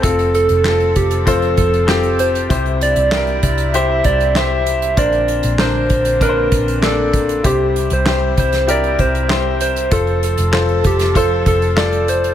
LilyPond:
<<
  \new Staff \with { instrumentName = "Soft synth lead" } { \time 4/4 \key c \mixolydian \tempo 4 = 97 a'8 a'4 g'8 a'8 a'4 c''8 | c''8 d''4 d''8 e''8 d''8 e''4 | d''4 c''4 bes'4 a'4 | g'8. c''8. c''8 d''8 c''4 c''8 |
a'8 a'4 g'8 a'8 a'4 c''8 | }
  \new Staff \with { instrumentName = "Upright piano" } { \time 4/4 \key c \mixolydian <c' f' a'>4 <c' f' a'>4 <c' f' c''>4 <c' f' g'>4 | <e' g' c''>4 <e' g' bes'>4 <e' g' c''>4 <e' g' c''>4 | <d' bes' c''>4 <d' bes' c''>4 <d' bes' b' c''>4 <bes d' d''>4 | <e' g' c''>4 <e' g' c''>4 <e' g' bes'>4 <e' g' c''>4 |
<f' a' c''>4 <f' a' c''>4 <f' a' c''>4 <f' a' d''>4 | }
  \new Staff \with { instrumentName = "Upright piano" } { \clef bass \time 4/4 \key c \mixolydian r1 | c4. r2 r8 | bes,4. r2 r8 | c4. r2 r8 |
r1 | }
  \new Staff \with { instrumentName = "String section" } { \time 4/4 \key c \mixolydian <f c' a'>1 | <c g e'>1 | <d bes c'>1 | <c g e'>1 |
<f c' a'>1 | }
  \new Staff \with { instrumentName = "Picked electric bass" } { \clef bass \time 4/4 \key c \mixolydian f,,8. f,,8. f,,4 f,,4. | c,8. c,8. c,4 c,4. | bes,,8. bes,,8. bes,,4 bes,,4. | c,8. c,8. c,4 c,4. |
f,,8. f,,8. f,,4 f,,4. | }
  \new DrumStaff \with { instrumentName = "Drums" } \drummode { \time 4/4 <hh bd>16 hh16 hh16 hh16 <hc sn>16 hh16 <hh bd>16 hh16 <hh bd>16 hh16 <hh bd>16 hh16 <hc sn>16 hh16 hh16 hh16 | <hh bd>16 hh16 hh16 hh16 <hc sn>16 hh16 <hh bd>16 hh16 hh8 <hh bd>16 hh16 <hc sn>8 hh16 hh16 | <hh bd>16 hh16 hh16 hh16 <hc sn>8 <hh bd>16 hh16 <hh bd>8 <hh bd>16 hh16 <hc sn>8 <hh bd>16 hh16 | <hh bd>8 hh16 hh16 <hc sn>8 <hh bd>16 <hh sn>16 hh16 hh16 <hh bd>16 hh16 <hc sn>8 hh16 hh16 |
<hh bd>16 hh16 hh16 hh16 <hc sn>16 hh16 <hh bd>16 <hh sn>16 <hh bd>8 <hh bd>16 hh16 <hc sn>16 hh16 hh16 hh16 | }
>>